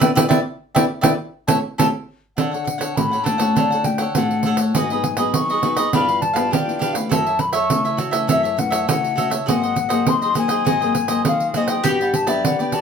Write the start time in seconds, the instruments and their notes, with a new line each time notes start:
0.00 nylon-string guitar B3 D4 E4, cavaquinho D5, flute G5, pandeiro
0.15 nylon-string guitar B3 D4 E4, cavaquinho B4 D5 E5, flute G5, pandeiro
0.28 nylon-string guitar B3 D4 E4, cavaquinho B4 D5 E5, flute G5, pandeiro
0.75 nylon-string guitar B3 D4 E4, cavaquinho B4 D5 E5, flute G5, pandeiro
1.01 nylon-string guitar B3 D4 E4, cavaquinho B4 D5 E5, flute G5, pandeiro
1.48 nylon-string guitar A3 C#4 E4, cavaquinho G4 A4 C#5, flute A5, pandeiro
1.78 nylon-string guitar A3 C#4 E4, cavaquinho G4 A4 C#5, flute A5, pandeiro
2.37 nylon-string guitar D3, cavaquinho D4 A4 C#5 F#5, flute F#5, pandeiro
2.51 cavaquinho A4 C#5 F#5, pandeiro
2.64 muted cavaquinho stroke, pandeiro
2.78 cavaquinho A4 C#5 F#5, pandeiro
2.96 nylon-string guitar A2 A3 C#4 F#4, flute B5, pandeiro
3.11 cavaquinho A4 C#5 F#5, pandeiro
3.23 nylon-string guitar A3 C#4 F#4, cavaquinho D4 A4 C#5 F#5, flute A5, pandeiro
3.38 nylon-string guitar A3 C#4 F#4, cavaquinho A4 C#5 F#5, pandeiro
3.56 nylon-string guitar D3, cavaquinho D4 A4 C#5 F#5, pandeiro
3.71 cavaquinho A4 C#5 F#5, pandeiro
3.84 nylon-string guitar A3 C#4 F#4, flute G5, muted cavaquinho stroke, pandeiro
3.98 cavaquinho A4 C#5 F#5, pandeiro
4.15 nylon-string guitar A2 A3 C#4 F#4, cavaquinho D4 A4 C#5 F#5, flute F#5, pandeiro
4.31 pandeiro
4.43 cavaquinho D4 A4 C#5 F#5, pandeiro
4.57 cavaquinho A4 C#5 F#5, pandeiro
4.74 nylon-string guitar G#2 F#3 B3 D#4, cavaquinho F#4 G#4 B4 D#5, flute G#5, pandeiro
4.90 nylon-string guitar F#3 B3 D#4, cavaquinho G#4 B4 D#5, pandeiro
5.04 muted cavaquinho stroke, pandeiro
5.17 nylon-string guitar F#3 B3 D#4, cavaquinho G#4 B4 D#5, pandeiro
5.34 nylon-string guitar D#3, flute C#6, pandeiro
5.50 cavaquinho G#4 B4 D#5, pandeiro
5.63 nylon-string guitar F#3 B3 D#4, cavaquinho F#4 G#4 B4 D#5, pandeiro
5.77 cavaquinho G#4 B4 D#5, pandeiro
5.93 nylon-string guitar G2 F3 B3 E4, cavaquinho D4 G4 B4 F5, flute B5, pandeiro
6.09 cavaquinho F5, pandeiro
6.22 flute A5, muted cavaquinho stroke, pandeiro
6.33 nylon-string guitar F3 B3 E4, cavaquinho G4 B4 F5, pandeiro
6.51 nylon-string guitar D3, cavaquinho D4 G4 B4 F5, flute G5, pandeiro
6.67 nylon-string guitar F3 B3 E4, pandeiro
6.79 cavaquinho D4 G4 B4 F5, pandeiro
6.93 nylon-string guitar E3 A3 C#4, cavaquinho G4 B4 F5, pandeiro
7.09 nylon-string guitar F#2, cavaquinho F#4 A4 C#5 E5, flute A5, pandeiro
7.26 cavaquinho A4 C#5 E5, pandeiro
7.39 flute B5, muted cavaquinho stroke, pandeiro
7.52 cavaquinho A4 C#5 E5, flute C#6, pandeiro
7.70 nylon-string guitar C#3 E3 A3 C#4, pandeiro
7.85 cavaquinho A4 C#5 E5, pandeiro
7.97 cavaquinho F#4 A4 C#5 E5, pandeiro
8.11 nylon-string guitar E3 A3 C#4, cavaquinho A4 C#5 E5, pandeiro
8.27 nylon-string guitar F#2, cavaquinho F#4 A4 C#5 E5, pandeiro
8.32 flute E5
8.43 cavaquinho A4 C#5 E5, pandeiro
8.57 nylon-string guitar E3 A3 C#4, flute F#5, muted cavaquinho stroke, pandeiro
8.70 cavaquinho A4 C#5 E5, pandeiro
8.88 nylon-string guitar C#3 E3 A3 C#4, cavaquinho F#4 A4 C#5 E5, flute F#5, pandeiro
9.04 pandeiro
9.16 nylon-string guitar E3 A3 C#4, cavaquinho F#4 A4 C#5 E5, pandeiro
9.30 cavaquinho A4 C#5 E5, pandeiro
9.46 nylon-string guitar G#2 F#3 A#3 C4, cavaquinho F#4 G#4 C5 D#5, flute F#5, pandeiro
9.61 cavaquinho G#4 C5 D#5, pandeiro
9.76 muted cavaquinho stroke, pandeiro
9.89 nylon-string guitar F#3 A#3 C4, cavaquinho G#4 C5 D#5, pandeiro
10.06 nylon-string guitar D#3, flute C6, pandeiro
10.22 cavaquinho G#4 C5 D#5, pandeiro
10.34 nylon-string guitar F#3 A#3 C4, cavaquinho F#4 G#4 C5 D#5, pandeiro
10.38 flute G#5
10.48 cavaquinho G#4 C5 D#5, pandeiro
10.65 nylon-string guitar G#2, cavaquinho F#4 G#4 C5 D#5, pandeiro
10.80 nylon-string guitar F#3 A#3 C4, cavaquinho G#4 C5 D#5, pandeiro
10.94 muted cavaquinho stroke, pandeiro
11.08 nylon-string guitar F#3 A#3 C4, cavaquinho G#4 C5 D#5, pandeiro
11.25 nylon-string guitar D#3, cavaquinho F#4 G#4 C5 D#5, flute F5, pandeiro
11.40 pandeiro
11.53 nylon-string guitar F#3 A#3 C4, cavaquinho F#4 G#4 C5 D#5, flute D#5, pandeiro
11.68 cavaquinho G#4 C5 D#5, flute G5, pandeiro
11.84 nylon-string guitar G2 B3 D4, cavaquinho F#4 G4 B4 D5, mandolin G4, pandeiro
12.00 cavaquinho G4 B4 D5, flute F#5, pandeiro
12.14 flute A5, muted cavaquinho stroke, pandeiro
12.26 nylon-string guitar F#3 B3 D4, cavaquinho G4 B4 D5, flute E5, pandeiro
12.44 nylon-string guitar D3, flute F#5, pandeiro
12.59 nylon-string guitar B3 D4, cavaquinho G4 B4 D5, flute G5, pandeiro
12.72 cavaquinho F#4 G4 B4 D5, flute A5, pandeiro